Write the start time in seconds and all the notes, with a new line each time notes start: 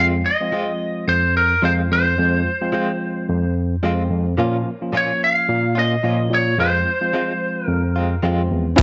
Already playing: F2 F3 G#3
0.00 F3 G#3 C4 F4
0.26 D#5
0.40 F3 G#3 C4 F4
0.52 F3 G#3 C4 F4
1.07 F2 C5
1.37 A#4
1.62 F2 F3 G#3 C4 F4 C5
1.91 F2 C5
2.18 F2 F3 G#3 C4 F4
2.61 F3 G#3 C4 F4
2.73 F3 G#3 C4 F4
3.29 F2
3.82 F2 F3 G#3 C4 F4
4.11 F2
4.37 A#2 F3 A#3 C#4 F4
4.81 F3 A#3 C#4 F4
4.93 A#2 A#3 C#4 F4
4.97 C#5
5.24 F5
5.49 A#2
5.75 A#3 C#4 F4 D#5
6.03 A#2 F3 A#3 C#4 F4
6.31 A#2 C#5
6.58 F2 F3 G#3 C4 F4 C5
7.01 F3 G#3 C4 F4
7.13 F3 G#3 C4 F4
7.66 F2 A#4
7.96 G#3 C4 F4
8.23 F2 F3 G#3 C4 F4
8.51 E2
8.77 C#4 F4 B4, kick, closed hi-hat